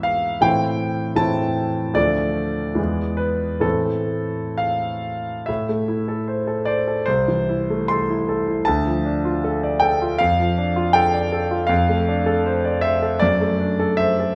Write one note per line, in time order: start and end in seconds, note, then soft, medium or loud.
0.00 0.38 G#2 soft
0.00 0.38 E3 soft
0.00 0.39 B3 soft
0.00 0.39 E4 soft
0.00 0.46 E5 medium
0.00 0.42 F5 medium
0.41 1.14 A2 medium
0.41 1.15 E3 soft
0.41 1.16 C4 soft
0.41 1.16 E4 soft
0.41 1.18 G5 medium
1.15 1.92 A2 medium
1.15 1.93 E3 soft
1.15 1.93 C4 soft
1.15 1.93 E4 soft
1.15 1.95 A5 medium
1.94 2.74 D2 medium
1.94 2.74 F3 soft
1.94 2.75 A3 soft
1.94 2.75 D4 soft
1.94 3.19 D5 medium
2.75 3.60 E2 soft
2.75 3.60 E3 soft
2.75 3.61 G#3 soft
2.75 3.61 B3 soft
3.17 3.63 B4 medium
3.60 5.42 A2 soft
3.60 5.43 E3 soft
3.60 5.43 A3 soft
3.60 5.44 C4 soft
3.60 5.04 A4 medium
4.58 5.47 F5 medium
5.46 7.03 A2 soft
5.46 6.66 E5 medium
5.69 6.00 A3 soft
5.88 6.20 E4 soft
6.08 6.40 A4 soft
6.28 6.59 C5 soft
6.47 6.79 A4 soft
6.65 6.99 C5 soft
6.65 7.06 D5 medium
6.88 7.07 A4 soft
7.06 8.63 C2 medium
7.06 7.89 C5 medium
7.28 7.61 E3 soft
7.49 7.82 E4 soft
7.70 8.02 A3 soft
7.88 8.21 A4 soft
7.88 8.66 C6 medium
8.10 8.40 E4 soft
8.29 8.59 A4 soft
8.48 8.67 E4 soft
8.65 10.16 D2 medium
8.65 9.81 A5 medium
8.87 9.17 F3 soft
9.06 9.36 D4 soft
9.25 9.55 F4 soft
9.44 9.74 A4 medium
9.63 9.93 D5 medium
9.80 10.12 A4 soft
9.80 10.18 G5 medium
10.02 10.20 F4 soft
10.19 11.67 F2 medium
10.19 10.95 F5 medium
10.40 10.69 F3 soft
10.58 10.88 D4 soft
10.76 11.06 F4 medium
10.93 11.25 A4 medium
10.93 11.69 G5 medium
11.14 11.44 D5 medium
11.32 11.62 A4 medium
11.51 11.70 F4 soft
11.67 13.18 F2 medium
11.67 12.83 F5 medium
11.89 12.19 A3 soft
12.08 12.39 D4 soft
12.26 12.57 A4 medium
12.46 12.77 C5 medium
12.65 12.95 D5 medium
12.81 13.15 C5 medium
12.81 13.21 E5 medium
13.02 13.22 A4 soft
13.19 14.35 F#2 medium
13.19 13.98 D5 medium
13.41 13.72 A3 soft
13.60 13.92 D4 soft
13.79 14.11 A4 medium
13.97 14.31 C5 medium
13.97 14.35 E5 medium
14.20 14.35 A4 soft